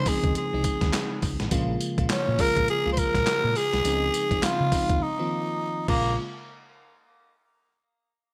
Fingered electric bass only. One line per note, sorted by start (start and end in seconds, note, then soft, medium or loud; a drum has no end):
0.24 0.33 D#2 loud
0.54 0.63 C2 medium
0.82 0.91 D#2 medium
1.23 1.37 C#2 loud
1.41 1.50 A1 loud
1.52 1.75 A#1 loud
1.98 2.08 A#1 loud
2.28 2.37 A#2 loud
2.57 2.66 A#1 medium
2.86 2.95 C#2 medium
3.15 3.24 A#1 medium
3.44 3.53 A#2 loud
3.73 3.83 C2 loud
3.85 4.09 C#2 loud
4.31 4.41 C#2 loud
4.43 muted fingered electric bass stroke soft
4.60 4.70 C#3 medium
4.90 4.99 D#2 loud
5.88 6.16 A#1 loud